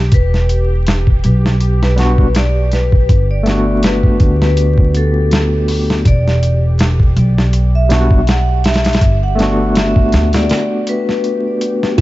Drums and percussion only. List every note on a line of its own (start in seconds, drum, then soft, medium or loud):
0.12 kick loud
0.12 closed hi-hat medium
0.34 snare soft
0.49 closed hi-hat medium
0.87 snare loud
0.87 closed hi-hat medium
1.07 kick medium
1.24 closed hi-hat medium
1.46 snare medium
1.61 closed hi-hat medium
1.83 snare soft
1.98 snare soft
1.98 closed hi-hat medium
2.18 kick medium
2.35 snare loud
2.35 closed hi-hat medium
2.72 snare soft
2.72 closed hi-hat medium
2.92 kick medium
3.09 kick loud
3.09 closed hi-hat medium
3.46 snare soft
3.46 closed hi-hat medium
3.83 snare loud
3.83 closed hi-hat medium
4.03 kick medium
4.20 kick medium
4.20 closed hi-hat medium
4.42 snare soft
4.57 closed hi-hat medium
4.78 kick medium
4.95 closed hi-hat medium
5.31 snare loud
5.31 closed hi-hat medium
5.68 open hi-hat medium
5.90 snare soft
6.05 kick loud
6.05 closed hi-hat medium
6.28 snare soft
6.43 closed hi-hat medium
6.79 snare loud
6.79 closed hi-hat medium
7.00 kick medium
7.17 closed hi-hat medium
7.38 snare medium
7.53 closed hi-hat medium
7.90 snare loud
7.90 closed hi-hat medium
8.11 kick medium
8.27 snare loud
8.27 closed hi-hat medium
8.64 snare medium
8.64 closed hi-hat medium
8.74 snare medium
8.74 closed hi-hat medium
8.85 snare medium
8.85 closed hi-hat medium
8.93 snare medium
8.93 closed hi-hat medium
9.01 kick loud
9.01 closed hi-hat medium
9.39 snare soft
9.39 closed hi-hat medium
9.75 snare loud
9.75 closed hi-hat medium
9.96 kick medium
10.12 snare loud
10.12 closed hi-hat medium
10.33 snare loud
10.33 closed hi-hat medium
10.49 snare loud
10.49 closed hi-hat medium
10.87 closed hi-hat medium
11.09 snare soft
11.24 closed hi-hat medium
11.61 closed hi-hat medium
11.83 snare soft
11.98 kick loud
11.98 closed hi-hat medium